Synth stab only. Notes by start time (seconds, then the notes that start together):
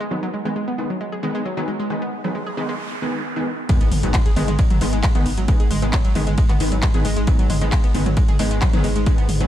0.11 D#3 G#3 B3
0.45 D#3 G#3 B3
0.78 D#3 G#3 B3
1.23 D#3 G#3 B3
1.57 D#3 G#3 B3
1.90 D#3 G#3 B3
2.24 D#3 G#3 B3
2.57 D#3 G#3 B3
3.02 D#3 G#3 B3
3.36 D#3 G#3 B3
3.69 D#3 G#3 B3
4.03 D#3 G#3 B3
4.36 D#3 G#3 B3
4.81 D#3 G#3 B3
5.15 D#3 G#3 B3
5.48 D#3 G#3 B3
5.82 D#3 G#3 B3
6.15 D#3 G#3 B3
6.60 D#3 G#3 B3
6.94 D#3 G#3 B3
7.27 D#3 G#3 B3
7.62 D#3 G#3 B3
7.95 D#3 G#3 B3
8.39 D#3 G#3 B3
8.73 D#3 G#3 B3
9.06 D#3 G#3 B3
9.41 D#3 G#3 B3